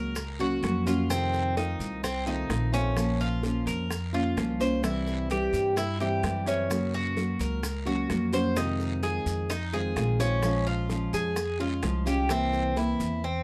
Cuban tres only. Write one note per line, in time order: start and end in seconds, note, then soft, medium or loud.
0.00 0.39 A#4 medium
0.40 0.85 F#4 medium
0.87 1.09 F4 medium
1.10 1.55 C4 medium
1.57 2.02 D#4 medium
2.04 2.26 C4 medium
2.27 2.72 D#4 medium
2.74 3.19 C#4 medium
3.21 3.66 F4 medium
3.67 4.12 A#4 medium
4.14 4.59 F4 medium
4.61 4.83 C5 medium
4.84 5.29 E4 medium
5.31 5.76 G4 medium
5.77 6.00 E4 medium
6.00 6.46 G4 medium
6.47 6.92 C#4 medium
6.94 7.39 F#4 medium
7.41 7.86 A#4 medium
7.87 8.32 F#4 medium
8.33 8.56 C5 medium
8.57 9.02 D#4 medium
9.03 9.49 G#4 medium
9.50 9.73 D#4 medium
9.73 10.19 G#4 medium
10.20 10.65 C#4 medium
10.67 11.12 F4 medium
11.14 11.59 G#4 medium
11.60 12.05 F4 medium
12.07 12.29 G4 medium
12.31 12.76 C4 medium
12.77 13.22 E4 medium
13.24 13.43 C4 medium